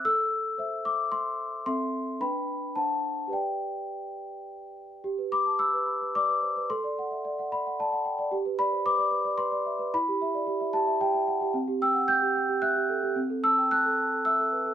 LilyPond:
\new Staff \with { instrumentName = "Celesta" } { \time 3/4 \key g \major \tempo 4 = 110 << { e'''4. d'''8 c'''4 | c'''4 b''4 a''4 | g''2~ g''8 r8 | r8 d'''8 e'''4 d'''4 |
c'''4. b''8 a''4 | r8 b''8 d'''4 c'''4 | b''4. a''8 g''4 | r8 e'''8 g'''4 fis'''4 |
r8 e'''8 fis'''4 e'''4 | } \\ { a'4 <c'' e''>2 | <c' a' e''>4 <d' b' g''>4 <d' c'' fis''>4 | <g' b' d''>2. | g'16 b'16 b''16 a''16 b''16 b'16 b''16 b'16 d''16 b'16 c''16 b'16 |
a'16 d''16 fis''16 e''16 d''16 fis''16 d''16 fis''16 d''16 fis''16 g''16 d''16 | g'16 b'16 d''16 c''16 b'16 d''16 b'16 d''16 b'16 d''16 e''16 b'16 | e'16 g'16 e''16 d''16 g'16 e''16 g'16 e''16 g'16 e''16 fis''16 g'16 | c'16 g'16 g''16 fis''16 g''16 g'16 g''16 g'16 e''16 g'16 a'16 g'16 |
c'16 a'16 a''16 g''16 a''16 a'16 a''16 a'16 e''16 a'16 b'16 a'16 | } >> }